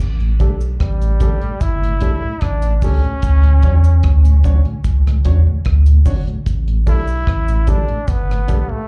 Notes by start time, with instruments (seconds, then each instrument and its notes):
0.00 sub bass A1, kick, cabasa
0.20 tonewheel organ A2, closed hi-hat
0.40 sub bass B1, tonewheel organ D3 G3 A3, grand piano D4 G4 A4, kick, closed hi-hat, cabasa
0.61 cabasa
0.80 sub bass A1, trombone G3, kick, cross-stick, closed hi-hat
1.02 tonewheel organ A2, closed hi-hat, cabasa
1.20 tonewheel organ D3 G3 A3, grand piano D4 G4 A4, kick, closed hi-hat, cabasa
1.42 tonewheel organ A2, closed hi-hat
1.61 sub bass G1, trombone E4, kick, closed hi-hat, cabasa
1.82 tonewheel organ A2, closed hi-hat
2.01 sub bass B1, tonewheel organ D3 G3 A3, grand piano D4 G4 A4, kick, closed hi-hat, cabasa
2.23 tonewheel organ A2
2.41 sub bass A1, trombone D4, kick, cross-stick, closed hi-hat
2.62 tonewheel organ A2, closed hi-hat, cabasa
2.77 trombone D4
2.82 sub bass C#2, tonewheel organ D3 G3 A3, trombone C#4, grand piano D4 G4 A4, kick, open hi-hat, cabasa
3.04 tonewheel organ A2, closed hi-hat
3.22 sub bass D2, kick, closed hi-hat, cabasa
3.43 tonewheel organ D2 A2, closed hi-hat
3.62 sub bass E2, tonewheel organ D3 F#3 C#4, grand piano D4 F#4 C#5, kick, closed hi-hat, cabasa
3.84 closed hi-hat, cabasa
4.03 sub bass D2, kick, cross-stick, closed hi-hat
4.25 tonewheel organ D2 A2, closed hi-hat, cabasa
4.44 tonewheel organ D3 F#3 C#4, grand piano D4 F#4 C#5, kick, closed hi-hat, cabasa
4.65 tonewheel organ D2 A2, closed hi-hat
4.84 sub bass C#2, kick, closed hi-hat, cabasa
5.07 tonewheel organ D2 A2, cross-stick, closed hi-hat
5.25 sub bass E2, tonewheel organ D3 F#3 C#4, grand piano D4 F#4 C#5, kick, closed hi-hat, cabasa
5.47 tonewheel organ D2 A2
5.65 sub bass D2, kick, cross-stick, closed hi-hat
5.86 tonewheel organ D2 A2, closed hi-hat, cabasa
6.06 sub bass G1, tonewheel organ D3 F#3 C#4, grand piano D4 F#4 C#5, kick, open hi-hat, cabasa
6.27 tonewheel organ D2 A2, closed hi-hat
6.46 sub bass A1, kick, closed hi-hat, cabasa
6.68 tonewheel organ A2, closed hi-hat
6.87 sub bass B1, tonewheel organ D3 G3 A3, grand piano D4 G4 A4, trombone E4, kick, open hi-hat, cabasa
7.08 cabasa
7.27 sub bass A1, kick, cross-stick, closed hi-hat
7.48 tonewheel organ A2, closed hi-hat, cabasa
7.67 tonewheel organ D3 G3 A3, grand piano D4 G4 A4, trombone D4, kick, closed hi-hat, cabasa
7.89 tonewheel organ A2, closed hi-hat
8.08 sub bass G1, trombone B3, kick, closed hi-hat, cabasa
8.29 tonewheel organ A2, cross-stick, closed hi-hat
8.48 sub bass B1, tonewheel organ D3 G3 A3, grand piano D4 G4 A4, kick, closed hi-hat, cabasa
8.69 tonewheel organ A2, trombone A3